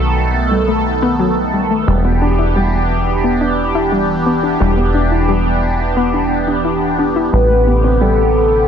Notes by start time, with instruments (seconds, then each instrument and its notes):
Already playing: acid bass B1, analog synth pad D#3 A3 B3 A4
0.51 synth arpeggio sound G3
0.68 synth arpeggio sound A3
1.02 synth arpeggio sound B3
1.19 synth arpeggio sound F#3
1.54 synth arpeggio sound G3
1.71 synth arpeggio sound A3
1.88 acid bass E1, analog synth pad E3 B3 D4 G4, synth arpeggio sound G3
2.05 synth arpeggio sound B3
2.22 synth arpeggio sound D4
2.39 synth arpeggio sound E4
2.56 synth arpeggio sound G3
3.24 synth arpeggio sound B3
3.41 synth arpeggio sound D4
3.75 synth arpeggio sound E4
3.92 synth arpeggio sound G3
4.26 synth arpeggio sound B3
4.43 synth arpeggio sound D4
4.60 acid bass E1, synth arpeggio sound G3
4.77 synth arpeggio sound B3
4.94 synth arpeggio sound D4
5.11 synth arpeggio sound E4
5.28 synth arpeggio sound G3
5.97 synth arpeggio sound B3
6.14 synth arpeggio sound D4
6.48 synth arpeggio sound D4
6.65 synth arpeggio sound E4
6.99 synth arpeggio sound D4
7.16 synth arpeggio sound E4
7.33 acid bass A1, analog synth pad C3 D3 G4, synth arpeggio sound G3, synth texture B3 B4, soft synth lead B4
7.50 synth arpeggio sound A3
7.67 synth arpeggio sound B3
7.84 synth arpeggio sound C4
8.01 synth arpeggio sound G3, soft synth lead A4